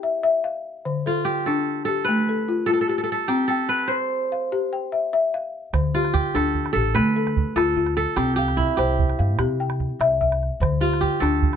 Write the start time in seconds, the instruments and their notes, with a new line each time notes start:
Already playing: kora E4 G4, balafon G5
0.03 balafon E5
0.23 balafon E5
0.44 balafon F5
0.85 balafon D3
1.06 kora F4, balafon A4
1.25 kora G4
1.46 balafon D4, kora A4
1.85 balafon G4, kora A4
2.04 balafon A3, kora B4
2.29 balafon A4
2.48 balafon F4
2.66 balafon F4, kora A4
2.73 kora A4
2.81 kora A4
2.88 balafon G4, kora A4
2.98 kora A4
3.04 kora A4
3.12 kora A4
3.28 balafon C4, kora G4
3.48 kora A4, balafon G5
3.69 kora B4
3.88 kora C5, balafon C5
4.32 balafon F5
4.52 balafon G4
4.73 balafon G5
4.92 balafon E5
5.13 balafon E5
5.34 balafon F5
5.73 upright bass D2, balafon D3, calabash thump, calabash click
5.95 kora F4, balafon G4
6.05 calabash click
6.14 kora G4, calabash thump
6.34 upright bass D2, balafon D4, kora A4, calabash click
6.55 calabash thump
6.66 calabash click
6.73 upright bass A1, balafon G4, kora A4
6.95 upright bass D3, balafon A3, kora B4, calabash thump, calabash click
7.16 balafon A4
7.27 calabash click
7.37 calabash thump
7.56 upright bass D2, balafon F4, kora A4, calabash click
7.77 balafon F4, calabash thump
7.87 calabash click
7.97 kora A4, calabash click
8.16 upright bass C2, balafon C4, kora G4, calabash thump, calabash click
8.36 kora G4, balafon F5
8.48 calabash click
8.57 kora E4, calabash thump
8.77 upright bass C2, kora G4, balafon C5, calabash click
8.99 calabash thump
9.10 calabash click
9.19 upright bass G2, balafon F5
9.39 upright bass C3, balafon G4, calabash thump, calabash click
9.60 balafon G5
9.70 calabash click
9.80 calabash thump
9.99 upright bass C2, balafon E5, calabash click
10.21 balafon E5, calabash thump
10.32 calabash click
10.43 calabash click
10.60 upright bass D2, balafon D3, calabash thump, calabash click
10.81 kora F4, balafon G4
10.93 calabash click
11.01 kora G4, calabash thump
11.20 upright bass D2, balafon D4, kora A4, calabash click
11.43 calabash thump
11.53 calabash click